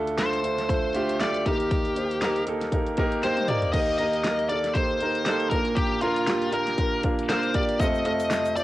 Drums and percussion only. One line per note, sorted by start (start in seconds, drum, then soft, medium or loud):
0.07 closed hi-hat soft
0.18 snare loud
0.18 clap medium
0.18 closed hi-hat medium
0.33 closed hi-hat soft
0.44 closed hi-hat medium
0.58 snare soft
0.58 closed hi-hat medium
0.69 kick medium
0.69 closed hi-hat medium
0.95 closed hi-hat medium
1.09 closed hi-hat soft
1.20 snare loud
1.20 clap medium
1.20 closed hi-hat medium
1.34 closed hi-hat soft
1.46 kick medium
1.46 closed hi-hat medium
1.60 closed hi-hat soft
1.71 kick loud
1.71 closed hi-hat medium
1.85 closed hi-hat soft
1.96 closed hi-hat medium
2.11 closed hi-hat soft
2.22 snare loud
2.22 clap medium
2.22 closed hi-hat medium
2.36 closed hi-hat soft
2.47 closed hi-hat medium
2.61 snare soft
2.61 closed hi-hat soft
2.72 kick medium
2.72 closed hi-hat medium
2.87 closed hi-hat soft
2.97 kick medium
2.97 closed hi-hat medium
3.12 closed hi-hat soft
3.23 snare soft
3.23 closed hi-hat medium
3.37 closed hi-hat soft
3.37 high tom medium
3.48 closed hi-hat medium
3.48 mid tom medium
3.62 closed hi-hat soft
3.62 floor tom medium
3.74 kick loud
3.74 closed hi-hat medium
3.74 crash medium
3.99 closed hi-hat medium
4.13 closed hi-hat soft
4.24 snare loud
4.24 clap medium
4.24 closed hi-hat medium
4.39 closed hi-hat soft
4.49 closed hi-hat medium
4.64 snare soft
4.64 closed hi-hat medium
4.75 kick medium
4.75 closed hi-hat medium
5.01 closed hi-hat medium
5.15 closed hi-hat soft
5.26 snare loud
5.26 clap medium
5.26 closed hi-hat medium
5.40 closed hi-hat soft
5.51 kick medium
5.51 closed hi-hat medium
5.65 closed hi-hat soft
5.76 kick loud
5.76 closed hi-hat medium
6.01 closed hi-hat medium
6.16 closed hi-hat soft
6.27 snare loud
6.27 clap medium
6.27 closed hi-hat medium
6.42 closed hi-hat soft
6.53 closed hi-hat medium
6.67 snare soft
6.67 closed hi-hat medium
6.78 kick medium
6.78 closed hi-hat medium
7.03 kick medium
7.03 closed hi-hat medium
7.19 closed hi-hat soft
7.29 snare loud
7.29 clap medium
7.29 closed hi-hat medium
7.43 closed hi-hat soft
7.54 kick medium
7.54 closed hi-hat medium
7.69 closed hi-hat soft
7.79 kick loud
7.79 closed hi-hat medium
7.79 shaker medium
7.94 shaker soft
8.05 closed hi-hat medium
8.20 closed hi-hat soft
8.20 shaker medium
8.31 snare loud
8.31 clap medium
8.31 closed hi-hat medium
8.31 shaker medium
8.45 closed hi-hat soft
8.45 shaker soft
8.56 closed hi-hat medium
8.56 shaker soft